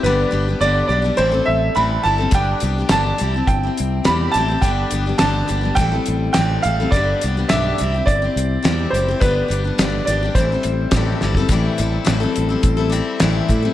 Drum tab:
HH |----------------|x-x-x-x-x-x-x-x-|x-x-x-x-x-x-x-x-|x-x-x-x-x-x-x-x-|
SD |----------------|----o-------o---|----o-------o---|----o-------o---|
BD |----------------|o-------o-------|o-------o-------|o-------o-------|

HH |x-x-x-x-x-x-x---|x-x-x-x-x-x-x-x-|
SD |----o-------o-o-|----o-------o---|
BD |o-------o---o--o|o-------o-----o-|